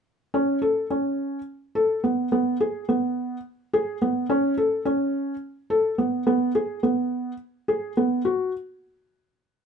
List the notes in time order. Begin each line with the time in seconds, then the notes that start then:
0.34 C#4
0.62 A4
0.90 C#4
1.75 A4
2.04 B3
2.32 B3
2.61 G#4
2.89 B3
3.73 G#4
4.02 B3
4.29 C#4
4.58 A4
4.85 C#4
5.70 A4
5.98 B3
6.27 B3
6.55 G#4
6.83 B3
7.68 G#4
7.97 B3
8.25 F#4